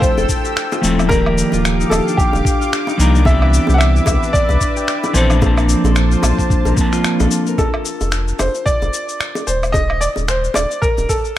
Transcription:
Already playing: clean electric guitar F3 A3 C4 G4, harp D4 E4 G4 A4, analog synth pad A4 G5 E6
0.00 grand piano C5, kick, shaker
0.18 sub bass F1, harp A4, high bongo, shaker
0.29 kick, shaker
0.45 harp G4, shaker
0.57 finger snap, shaker
0.72 harp F4, high bongo, shaker
0.81 sub bass D#1, clean electric guitar F3 A3 C4 E4 A4, shaker
0.99 harp E4, low woodblock, shaker
1.07 clean electric guitar F3 A#3 D5, analog synth pad G4 F5 D6, grand piano A#4, kick, high bongo
1.11 clean electric guitar D#3 G4, shaker
1.26 harp G4, low woodblock
1.38 shaker
1.52 sub bass D#1, harp F4, high bongo, shaker
1.65 finger snap, shaker
1.80 harp D#4, shaker
1.90 sub bass D#1, grand piano A4, high bongo, low woodblock, shaker
2.07 harp D4, shaker
2.17 grand piano G4, kick, shaker
2.33 sub bass D#1, harp G4, high bongo, shaker
2.45 kick, shaker
2.61 harp F4, shaker
2.73 finger snap, shaker
2.87 harp D#4, high bongo, shaker
2.97 sub bass C2, clean electric guitar F3 A#3 D4 D#4 A#4, shaker
3.14 harp D4, shaker
3.23 clean electric guitar E3 B3 C4, analog synth pad B4 E5, grand piano E5, kick, high bongo, shaker
3.29 clean electric guitar D4 G4
3.42 harp B4, low woodblock
3.54 shaker
3.67 sub bass C2, harp G4, high bongo, shaker
3.74 grand piano F#5
3.78 grand piano E5, finger snap, shaker
3.96 harp E4, shaker
4.06 sub bass C2, kick, high bongo, low woodblock, shaker
4.23 harp D4, shaker
4.33 grand piano D5, kick, shaker
4.49 sub bass C2, harp B4, high bongo, shaker
4.61 kick, shaker
4.77 harp G4, shaker
4.88 finger snap, shaker
5.04 harp E4, high bongo, shaker
5.13 sub bass A#1, clean electric guitar E3 B3 C4 D4 A4, grand piano C5, shaker
5.30 harp D4, low woodblock, shaker
5.39 clean electric guitar F3 A#3 C4, analog synth pad C5 A5, kick, high bongo, shaker
5.45 clean electric guitar D4 A5
5.57 harp A#4, low woodblock, shaker
5.69 shaker
5.84 sub bass A#1, harp A4, high bongo, shaker
5.96 finger snap, shaker
6.11 harp F4, shaker
6.23 sub bass A#1, high bongo, low woodblock, shaker
6.38 harp D4, kick, shaker
6.50 kick, shaker
6.65 sub bass A#1, harp A#4, high bongo, shaker
6.74 clean electric guitar F3 A#3 C4, kick, shaker
6.79 clean electric guitar D4 A5
6.93 harp F4, finger snap, shaker
7.04 finger snap, shaker
7.19 sub bass A#1, harp A4, high bongo, shaker
7.31 shaker
7.47 harp A#4, shaker
7.58 grand piano A4, kick, high bongo, shaker
7.74 low woodblock
7.85 shaker
8.01 sub bass F1, high bongo, shaker
8.12 finger snap, shaker
8.28 shaker
8.39 sub bass F1, grand piano C5, high bongo, low woodblock, shaker
8.55 shaker
8.66 grand piano D5, kick, shaker
8.82 sub bass F1, high bongo, shaker
8.94 shaker
9.09 shaker
9.21 finger snap, shaker
9.35 high bongo, shaker
9.47 sub bass D#1, grand piano C5, shaker
9.63 low woodblock, shaker
9.72 grand piano D#5, kick, high bongo, shaker
9.90 low woodblock
10.01 grand piano D5, shaker
10.16 sub bass D#1, high bongo, shaker
10.28 grand piano C5, finger snap, shaker
10.44 shaker
10.54 sub bass D#1, grand piano D5, high bongo, low woodblock, shaker
10.71 shaker
10.82 grand piano A#4, kick, shaker
10.98 sub bass D#1, high bongo, shaker
11.09 grand piano A4, kick, shaker
11.25 shaker

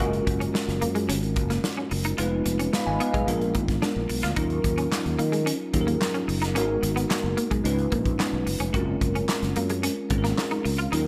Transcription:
Already playing: tine electric piano D#5 G#5
0.00 fretless electric bass F#1, tine electric piano G#3 C#4 F4 F#4 A#4, kick, closed hi-hat
0.13 closed hi-hat
0.27 fretless electric bass F#1, muted clean electric guitar stroke, kick, closed hi-hat
0.40 clean electric guitar C#4, closed hi-hat
0.54 muted clean electric guitar stroke, snare
0.68 fretless electric bass F#1, snare, closed hi-hat
0.81 fretless electric bass F#2, clean electric guitar A#3, closed hi-hat
0.95 clean electric guitar G#3, closed hi-hat
1.09 fretless electric bass G#1, clean electric guitar C#4, closed hi-hat
1.23 closed hi-hat
1.36 fretless electric bass F#1, muted clean electric guitar stroke, kick, closed hi-hat
1.50 clean electric guitar A#3, snare, closed hi-hat
1.64 snare
1.77 clean electric guitar C#4
1.91 fretless electric bass F#1, muted clean electric guitar stroke, open hi-hat
2.04 clean electric guitar D#4, closed hi-hat
2.17 fretless electric bass F1, tine electric piano G#3 B3 D#4 F4 B4, clean electric guitar F4, closed hi-hat
2.46 fretless electric bass F1, muted clean electric guitar stroke, closed hi-hat
2.59 clean electric guitar C#4, closed hi-hat
2.73 tine electric piano F5 B5, muted clean electric guitar stroke, snare
2.86 fretless electric bass G#1, tine electric piano D#5 G#5
3.00 clean electric guitar B3, tine electric piano B4 F5, closed hi-hat
3.14 fretless electric bass B1, clean electric guitar G#3, tine electric piano G#4 D#5, kick, closed hi-hat
3.26 fretless electric bass A#1, tine electric piano G#3 B3 D4 F4 A#4, closed hi-hat
3.41 closed hi-hat
3.55 fretless electric bass G#1, clean electric guitar A#3, kick, closed hi-hat
3.68 kick, snare, closed hi-hat
3.82 clean electric guitar D4, snare
3.96 fretless electric bass A#1
4.09 fretless electric bass B1, muted clean electric guitar stroke, open hi-hat
4.22 fretless electric bass D2, clean electric guitar F4, snare, closed hi-hat
4.36 fretless electric bass D#2, tine electric piano F#3 C#4 D#4 F4 A#4, clean electric guitar D#4, kick, closed hi-hat
4.50 closed hi-hat
4.64 fretless electric bass D#2, muted clean electric guitar stroke, kick, closed hi-hat
4.78 clean electric guitar C#4, closed hi-hat
4.92 muted clean electric guitar stroke, snare, clap
5.05 fretless electric bass D#2, closed hi-hat
5.19 fretless electric bass D#3, clean electric guitar A#3, closed hi-hat
5.32 clean electric guitar G#3, closed hi-hat
5.46 clean electric guitar C#4, closed hi-hat
5.73 fretless electric bass D#2, tine electric piano F#3 C#4 D#4 F4 G#4, muted clean electric guitar stroke, kick, closed hi-hat
5.81 tine electric piano A#4
5.87 clean electric guitar A#3, closed hi-hat
6.01 snare, clap
6.14 clean electric guitar C#4, closed hi-hat
6.28 fretless electric bass F#1, muted clean electric guitar stroke, open hi-hat
6.42 clean electric guitar D#4, snare, closed hi-hat
6.55 fretless electric bass G#1, tine electric piano G#3 B3 D#4 F#4 A#4, clean electric guitar C#4, closed hi-hat
6.83 fretless electric bass G#1, muted clean electric guitar stroke, closed hi-hat
6.96 clean electric guitar B3, closed hi-hat
7.10 muted clean electric guitar stroke, snare, clap
7.24 fretless electric bass F#1
7.37 clean electric guitar A#3, closed hi-hat
7.51 fretless electric bass B1, clean electric guitar G#3, kick, closed hi-hat
7.64 fretless electric bass C#2, tine electric piano G#3 C#4 D#4 F4 B4, closed hi-hat
7.79 closed hi-hat
7.92 fretless electric bass A#1, clean electric guitar A#3, kick, closed hi-hat
8.06 kick, closed hi-hat
8.19 clean electric guitar B3, snare, clap
8.33 fretless electric bass B1
8.46 fretless electric bass F#1, muted clean electric guitar stroke, open hi-hat
8.60 fretless electric bass F1, clean electric guitar C#4, closed hi-hat
8.73 fretless electric bass F#1, tine electric piano G#3 C4 C#4 F4 A#4, clean electric guitar F#4, kick, closed hi-hat
9.01 fretless electric bass F#1, muted clean electric guitar stroke, kick, closed hi-hat
9.15 clean electric guitar C#4, closed hi-hat
9.29 muted clean electric guitar stroke, snare, clap
9.42 fretless electric bass F#1, snare, closed hi-hat
9.56 fretless electric bass F#2, clean electric guitar A#3, closed hi-hat
9.70 clean electric guitar G#3, closed hi-hat
9.83 clean electric guitar C#4, closed hi-hat
10.10 fretless electric bass G#1, tine electric piano G#3 C4 C#4 F4 G#4, muted clean electric guitar stroke, kick, closed hi-hat
10.18 tine electric piano A#4
10.24 clean electric guitar A#3, snare, closed hi-hat
10.38 snare, clap
10.51 clean electric guitar D#4, closed hi-hat
10.65 fretless electric bass C#2, muted clean electric guitar stroke, open hi-hat
10.78 clean electric guitar F4, closed hi-hat
10.92 fretless electric bass D#2, tine electric piano F#3 C#4 D#4 F4 A#4, clean electric guitar D#4, closed hi-hat

